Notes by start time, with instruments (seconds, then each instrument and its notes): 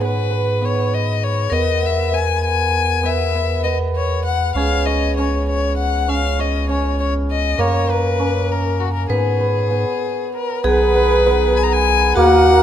Already playing: analog synth bass G#2, hammered dulcimer C#4 D#4 G#4 B4, vibraphone G#4
0.01 hammered dulcimer B3, violin B4
0.31 hammered dulcimer B4
0.62 hammered dulcimer B3, violin C#5
0.94 violin D#5
1.23 violin C#5
1.50 analog synth bass E2, hammered dulcimer B3, vibraphone A#4, violin D#5
1.82 hammered dulcimer B3, violin E5
2.12 hammered dulcimer B3, violin G#5
2.44 violin G#5
3.03 hammered dulcimer B3, violin E5
3.35 hammered dulcimer B3
3.64 hammered dulcimer B3, violin D#5
3.96 violin C#5
4.26 violin F#5
4.55 analog synth bass C#2, hammered dulcimer C#4, vibraphone G#4, violin F5
4.86 hammered dulcimer C#5, violin D#5
5.17 hammered dulcimer C#4, violin C#5
5.49 violin C#5
5.78 violin F#5
6.08 hammered dulcimer C#4, violin F5
6.39 hammered dulcimer C#5, violin D#5
6.69 hammered dulcimer C#4, violin C#5
7.00 violin C#5
7.31 violin D#5
7.58 analog synth bass F#2, hammered dulcimer A#3, vibraphone A#4, violin C#5
7.89 violin B4, hammered dulcimer A#5
8.19 hammered dulcimer C#4
8.52 violin A#4
8.80 violin F#4
8.94 violin A#4
9.09 analog synth bass G#2, hammered dulcimer B3, violin G#4, vibraphone B4
9.40 hammered dulcimer B4
9.71 hammered dulcimer B3
10.36 violin A#4
10.64 analog synth bass B1, harmonium D#3 B3 G#4, hammered dulcimer B3, vibraphone G#4, violin B4
10.96 hammered dulcimer B4
11.27 hammered dulcimer B3
11.56 violin G#5
11.63 violin A#5
11.73 violin G#5
12.16 analog synth bass D#2, hammered dulcimer A#3, harmonium A#3 F#4, vibraphone F#4, violin F#5
12.46 hammered dulcimer A#4